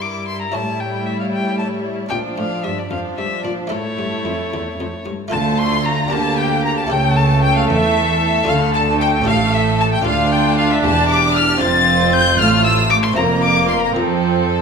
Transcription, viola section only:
Already playing: G3
0.54 G3
2.11 F3
2.91 F3
3.72 A3
5.33 A3
6.12 A#3
6.91 A3
8.48 A3
10.06 D4
11.61 C4
12.39 A3
13.17 A#3
13.95 C4

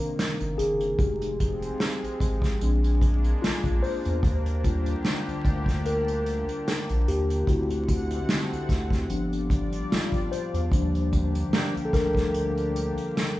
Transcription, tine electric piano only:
Already playing: D#3 A#3 D4 A#4
0.58 G#4
0.99 G#3 D#4 G4
2.61 G#3 C4 D4
3.42 F4
3.83 C5
4.64 G3 D4 F4
5.86 A#4
7.08 G4
7.48 C4 E4 F#4
9.10 F3 B3 D4
9.92 F4
10.32 C5
10.72 F3 G3 D4
11.85 A4
11.93 F3 G3 D4 A#4

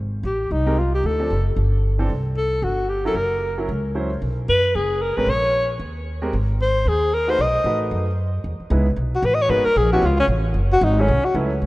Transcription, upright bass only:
Already playing: G#1
0.23 A1
0.51 C2
1.03 D2
1.30 F#1
1.56 G1
2.09 C2
2.62 G1
3.14 F#1
3.69 C#2
4.22 B1
4.48 F#2
4.75 F#1
5.17 G#1
5.26 A#1
5.79 D#2
6.33 G#1
6.86 D#2
7.38 B1
7.64 A1
7.91 F#2
8.44 E2
8.60 muted upright bass stroke
8.70 C#2
8.96 B1
9.22 A1
9.49 G#1
9.66 muted upright bass stroke
9.76 A#1
10.02 C#2
10.28 A1
10.54 F#1
10.81 G#1
11.08 B1
11.24 muted upright bass stroke
11.34 C#2
11.62 D2

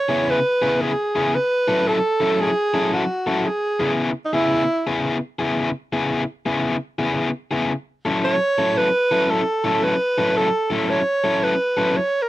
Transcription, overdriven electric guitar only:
0.09 C#3 B3 E4 G#4
0.62 C#3 B3 E4 G#4
1.15 C#3 B3 E4 G#4
1.68 F#3 C#4 E4 A4
2.20 F#3 C#4 E4 A4
2.74 F#3 C#4 E4 A4
3.27 F#3 C#4 E4 A4
3.80 C#3 B3 E4 G#4
4.33 C#3 B3 E4 G#4
4.87 C#3 B3 E4 G#4
5.39 C#3 B3 E4 G#4
5.93 C#3 B3 E4 G#4
6.46 C#3 B3 E4 G#4
6.99 C#3 B3 E4 G#4
7.51 C#3 B3 E4 G#4
8.05 F#3 C#4 E4 A4
8.58 F#3 C#4 E4 A4
9.11 F#3 C#4 E4 A4
9.64 F#3 C#4 E4 A4
10.18 F#3 C#4 E4 A4
10.70 F#3 C#4 E4 A4
11.24 F#3 C#4 E4 A4
11.77 F#3 C#4 E4 A4

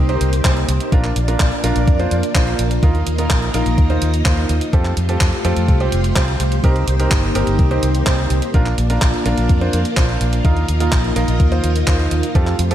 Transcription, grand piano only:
0.09 C4 D#4 G4 C5
0.45 C4 D#4 G4 C5
0.92 A#3 D4 F4 A#4
1.28 A#3 D4 F4 A#4
1.64 A#3 D4 F4 A#4
1.99 A#3 D4 F4 C5
2.35 A#3 D4 F4 C5
2.83 A#3 D#4 F4 A#4
3.18 A#3 D#4 F4 A#4
3.54 A#3 D#4 F4 A#4
3.90 A#3 D#4 F4 C5
4.26 A#3 D#4 F4 C5
4.73 C4 F4 G4 A4
5.09 C4 F4 G4 A4
5.45 C4 F4 G4 A4
5.80 C4 F4 G4 C5
6.16 C4 F4 G4 C5
6.64 C4 D#4 G4 A#4
7.00 C4 D#4 G4 A#4
7.35 C4 D#4 G4 A#4
7.71 C4 D#4 G4 C5
8.07 C4 D#4 G4 C5
8.54 A#3 D4 F4 A#4
8.90 A#3 D4 F4 A#4
9.26 A#3 D4 F4 A#4
9.61 A#3 D4 F4 C5
9.97 A#3 D4 F4 C5
10.45 A#3 D#4 F4 A#4
10.80 A#3 D#4 F4 A#4
11.16 A#3 D#4 F4 A#4
11.52 A#3 D#4 F4 C5
11.88 A#3 D#4 F4 C5
12.35 C4 F4 G4 A4
12.71 C4 F4 G4 A4

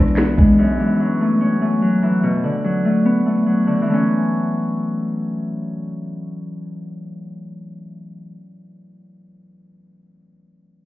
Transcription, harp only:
Already playing: E3 G#3 B3 D4 E4
0.18 B3
0.38 G#3
0.59 F#2
0.79 E3
1.00 F#3
1.20 A3
1.41 C#4
1.61 A3
1.82 F#3
2.03 E3
2.23 B2
2.44 D3
2.64 F#3
2.85 A3
3.05 B3
3.26 A3
3.46 F#3
3.67 D3
3.82 E3
3.86 F#3
3.90 A3 C#4

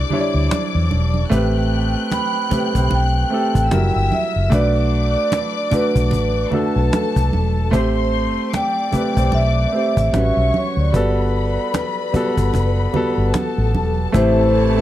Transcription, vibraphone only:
2.13 B5
2.94 G5
3.57 G5
4.14 E5
4.54 D5
5.18 D5
5.75 B4
8.56 G5
9.34 E5
9.99 E5
10.56 C#5
10.80 D5
14.16 C5

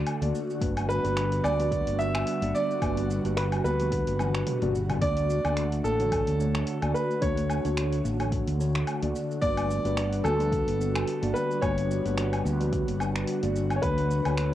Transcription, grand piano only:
Already playing: D5
0.89 B4
1.44 D5
1.99 E5
2.55 D5
3.37 B4
3.64 B4
5.01 D5
5.84 A4
6.94 B4
7.22 C#5
9.42 D5
10.24 A4
11.34 B4
11.61 C#5
13.76 C#5
13.82 B4

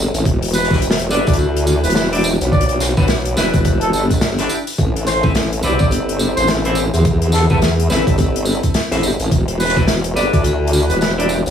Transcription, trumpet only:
0.54 B4
1.10 D5
1.27 D5
1.84 B4
1.95 B4
2.51 D5
2.68 D5
3.36 B4
3.54 B4
3.81 A4
3.93 A4
5.07 C5
5.64 D5
5.80 D5
6.36 C5
7.34 A4
7.51 A4
9.59 B4
10.16 D5
10.33 D5
10.89 B4
11.00 B4

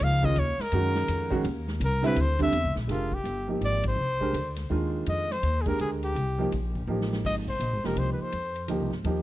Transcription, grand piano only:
Already playing: F3 A#3 D#4 G#4
0.23 D#3 G#3 C#4 F4
0.72 D#3 G#3 C#4 F#4
1.30 D#3 G#3 C#4 F#4
2.02 D3 G3 C4 E4
2.39 D3 G3 C4 D4
2.88 G#3 D4 G4 A#4
3.48 F3 A#3 D#4 G4
4.21 G#3 D4 G4 A#4
4.70 D#3 G#3 D4 F4
5.66 G#3 D4 G4 A#4
6.38 F3 A#3 D#4 G4
6.88 F3 A#3 D#4 G4
7.84 F3 A#3 D#4 G4
8.68 F3 A#3 D#4 G4
9.05 F3 A#3 D#4 G4

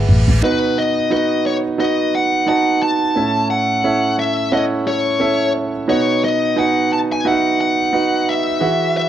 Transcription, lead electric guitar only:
0.44 B4
0.78 D#5
1.12 D#5
1.46 C#5
1.80 D#5
2.15 F#5
2.49 F#5
2.83 A5
3.50 F#5
4.19 E5
4.53 D#5
4.88 C#5
5.90 C#5
6.24 D#5
6.59 F#5
6.93 A5
7.12 G#5
7.27 F#5
7.61 F#5
8.29 E5
8.97 E5

